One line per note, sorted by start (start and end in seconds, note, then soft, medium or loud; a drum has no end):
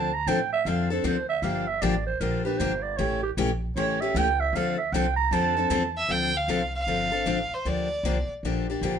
0.00 0.25 D2 medium
0.00 0.10 A4 medium
0.00 0.15 A5 medium
0.13 0.29 A#5 loud
0.27 0.64 A2 medium
0.27 0.38 D3 medium
0.27 0.38 F3 medium
0.27 0.39 C4 loud
0.27 0.39 D4 loud
0.27 0.39 A4 loud
0.27 0.52 G5 medium
0.52 0.67 E5 loud
0.65 1.03 F2 medium
0.65 0.87 D3 medium
0.65 0.88 F3 medium
0.65 0.88 C4 medium
0.65 0.88 D4 medium
0.65 0.88 A4 medium
0.65 0.90 F5 medium
0.90 1.04 C4 medium
0.90 1.04 D4 medium
0.90 1.04 A4 medium
0.90 1.07 A4 medium
1.04 1.42 D2 medium
1.04 1.15 D3 medium
1.04 1.16 F3 medium
1.04 1.16 C4 medium
1.04 1.16 D4 medium
1.04 1.16 A4 medium
1.04 1.28 C5 medium
1.29 1.44 E5 loud
1.42 1.80 G1 medium
1.42 1.64 D3 medium
1.42 1.65 F3 medium
1.42 1.65 A#3 medium
1.42 1.65 D4 medium
1.42 1.65 G4 medium
1.42 1.69 F5 medium
1.67 1.83 E5 medium
1.82 2.19 A1 medium
1.82 1.93 D3 medium
1.82 1.93 F3 loud
1.82 1.94 A#3 loud
1.82 1.94 D4 loud
1.82 1.94 G4 loud
1.82 2.06 D5 medium
2.07 2.22 C5 loud
2.20 2.58 A#1 medium
2.20 2.42 D3 medium
2.20 2.42 F3 medium
2.20 2.43 A#3 medium
2.20 2.43 D4 medium
2.20 2.43 G4 medium
2.20 2.44 A#4 medium
2.45 2.60 A#3 medium
2.45 2.59 D4 medium
2.45 2.59 G4 medium
2.45 2.59 B4 medium
2.58 2.97 G1 loud
2.58 2.71 D3 medium
2.58 2.71 F3 medium
2.58 2.72 A#3 medium
2.58 2.72 D4 loud
2.58 2.72 G4 loud
2.58 2.84 C5 medium
2.82 2.99 D5 medium
2.97 3.36 A1 medium
2.97 3.20 C#3 medium
2.97 3.20 E3 medium
2.97 3.20 A3 medium
2.97 3.20 C#4 medium
2.97 3.21 G4 medium
2.97 3.22 C#5 medium
3.23 3.31 G4 medium
3.37 3.75 A#1 medium
3.37 3.49 C#3 loud
3.37 3.49 E3 loud
3.37 3.49 A3 loud
3.37 3.49 C#4 loud
3.37 3.49 G4 loud
3.76 4.14 A1 medium
3.76 3.98 C#3 medium
3.76 3.98 E3 medium
3.76 3.98 A3 medium
3.76 3.98 C#4 medium
3.76 3.98 G4 medium
3.76 4.02 C#5 medium
4.01 4.15 A3 medium
4.01 4.15 C#4 medium
4.01 4.15 G4 medium
4.01 4.19 E5 medium
4.15 4.52 C#2 loud
4.15 4.27 C#3 medium
4.15 4.27 E3 medium
4.15 4.27 A3 medium
4.15 4.27 C#4 loud
4.15 4.27 G4 loud
4.15 4.42 G5 loud
4.40 4.56 E5 medium
4.53 4.91 D2 medium
4.53 4.76 D3 medium
4.53 4.76 F3 medium
4.53 4.76 C4 medium
4.53 4.77 D4 medium
4.53 4.77 A4 medium
4.53 4.77 F5 loud
4.78 4.94 E5 medium
4.92 5.30 C2 loud
4.92 5.05 D3 medium
4.92 5.05 F3 medium
4.92 5.05 C4 loud
4.92 5.05 D4 loud
4.92 5.06 A4 loud
4.92 5.15 G5 medium
5.16 5.33 A#5 loud
5.31 5.69 F2 loud
5.31 5.54 D3 medium
5.31 5.54 F3 medium
5.31 5.54 C4 medium
5.31 5.54 D4 medium
5.31 5.54 A4 medium
5.31 6.03 A5 loud
5.57 5.70 C4 soft
5.57 5.70 D4 medium
5.57 5.70 A4 medium
5.70 6.08 E2 loud
5.70 5.82 D3 medium
5.70 5.82 F3 medium
5.70 5.82 C4 loud
5.70 5.82 D4 loud
5.70 5.82 A4 loud
5.98 6.12 E5 medium
6.09 6.47 D2 medium
6.09 6.31 D3 medium
6.09 6.31 F3 medium
6.09 6.31 C4 medium
6.09 6.31 D4 medium
6.09 6.31 A4 medium
6.09 6.38 G5 loud
6.37 6.74 F5 medium
6.48 6.86 C2 medium
6.48 6.60 D3 medium
6.48 6.60 F3 medium
6.48 6.60 C4 medium
6.48 6.60 D4 medium
6.48 6.60 A4 loud
6.75 7.55 F5 loud
6.87 7.25 G1 medium
6.87 7.09 D3 medium
6.87 7.09 F3 medium
6.87 7.09 C4 medium
6.87 7.09 D4 medium
6.87 7.09 A4 medium
7.12 7.25 C4 soft
7.12 7.26 D4 medium
7.12 7.26 A4 medium
7.26 7.49 A1 medium
7.26 7.38 D3 medium
7.26 7.38 F3 medium
7.26 7.38 C4 medium
7.26 7.38 D4 medium
7.26 7.38 A4 medium
7.51 7.69 C5 medium
7.51 muted upright bass stroke soft
7.65 8.03 D2 medium
7.65 7.87 D3 medium
7.65 7.87 F3 medium
7.65 7.87 A#3 medium
7.65 7.87 D4 medium
7.65 7.88 G4 medium
7.65 8.30 D5 medium
8.03 8.27 C2 medium
8.03 8.16 D3 medium
8.03 8.16 F3 medium
8.03 8.16 A#3 medium
8.03 8.16 D4 loud
8.03 8.16 G4 medium
8.28 muted upright bass stroke soft
8.43 8.81 A#1 medium
8.43 8.66 D3 medium
8.43 8.66 F3 medium
8.43 8.66 A#3 medium
8.43 8.66 D4 medium
8.43 8.66 G4 medium
8.70 8.82 A#3 medium
8.70 8.82 D4 medium
8.70 8.83 G4 medium
8.81 8.99 A1 medium
8.81 8.94 D3 medium
8.81 8.94 F3 medium
8.81 8.94 A#3 loud
8.81 8.94 D4 medium
8.81 8.94 G4 medium